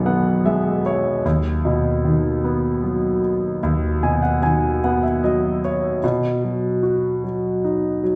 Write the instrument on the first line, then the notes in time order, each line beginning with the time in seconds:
grand piano
Already playing: B1 B2 D#3 G#3
0.06 B3 F#5
0.45 G#3 E5
0.86 C#5
1.25 D#2
1.65 B2
2.05 D#3
2.44 B3
2.84 F#3
3.63 D#2
4.03 B2 G#5
4.22 F#5
4.42 D#3 G#5
4.84 B3 F#5
5.03 E5
5.24 F#3 D#5
5.65 C#5
6.04 B2
6.44 F#3
6.83 F#4
7.24 F#3
7.64 D#4
8.03 F#3